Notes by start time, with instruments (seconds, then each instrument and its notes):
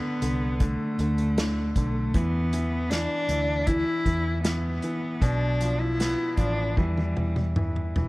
Already playing: grand piano D3, cello B3
0.22 fingered electric bass C2, grand piano D3, closed hi-hat
0.60 grand piano D3, cello A3, kick, closed hi-hat
0.99 fingered electric bass D2, grand piano D3, closed hi-hat
1.18 closed hi-hat
1.38 grand piano D3, snare, closed hi-hat
1.75 fingered electric bass B1, grand piano D3, cello A3, kick, closed hi-hat
2.14 fingered electric bass E2, grand piano E3, cello B3, kick, closed hi-hat
2.53 grand piano E3, closed hi-hat
2.90 grand piano E3, cello D4, snare, closed hi-hat
3.29 fingered electric bass D2, grand piano E3, closed hi-hat
3.67 grand piano E3, cello E4, kick, closed hi-hat
4.06 fingered electric bass E2, grand piano E3, kick, closed hi-hat
4.43 grand piano E3, cello B3, snare, closed hi-hat
4.82 grand piano E3, closed hi-hat
5.22 fingered electric bass B1, grand piano B2, cello D4, kick, closed hi-hat
5.61 grand piano F3, closed hi-hat
5.80 cello E4
6.00 grand piano B3, snare, closed hi-hat
6.38 fingered electric bass A1, grand piano F3, cello D4, kick, closed hi-hat
6.77 fingered electric bass E2, grand piano E3, cello G3, kick, high tom
6.97 high tom
7.17 fingered electric bass E2, grand piano E3, mid tom
7.36 mid tom
7.56 grand piano E3, mid tom
7.76 mid tom
7.96 fingered electric bass E1, grand piano E3, floor tom